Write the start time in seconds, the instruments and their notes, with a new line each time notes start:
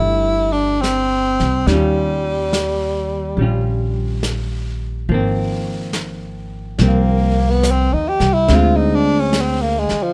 Already playing: upright bass G1, hollow-body jazz guitar G3 A3 E4, tenor saxophone E4
0.52 tenor saxophone D4
0.81 tenor saxophone C4, snare, hi-hat pedal
1.40 upright bass C2, snare
1.66 upright bass D#2, hollow-body jazz guitar D#3, tenor saxophone G3, brush sweep, snare
1.70 hollow-body jazz guitar G3 C#4 F4
2.53 snare, hi-hat pedal
3.37 upright bass A#1, hollow-body jazz guitar G3, brush sweep
3.41 hollow-body jazz guitar C#4 F4
4.23 snare, hi-hat pedal
5.09 upright bass G#1, hollow-body jazz guitar F3 A#3, brush sweep
5.14 hollow-body jazz guitar C4
5.93 snare, hi-hat pedal
6.78 upright bass C2, hollow-body jazz guitar F3 A#3 C4, brush sweep, snare
6.87 tenor saxophone A#3
7.49 tenor saxophone B3
7.63 snare, hi-hat pedal
7.71 tenor saxophone C4
7.93 upright bass D#2, tenor saxophone D#4
8.08 tenor saxophone G4
8.20 upright bass C2, snare
8.34 tenor saxophone E4
8.48 upright bass D2, hollow-body jazz guitar D3 G#3 C4, brush sweep, snare
8.53 hollow-body jazz guitar F4, tenor saxophone F4
8.76 tenor saxophone D#4
8.95 tenor saxophone D4
9.20 tenor saxophone C#4
9.33 snare, hi-hat pedal
9.40 tenor saxophone C4
9.62 tenor saxophone A#3
9.79 tenor saxophone G#3
9.89 muted upright bass stroke, snare
10.03 tenor saxophone F3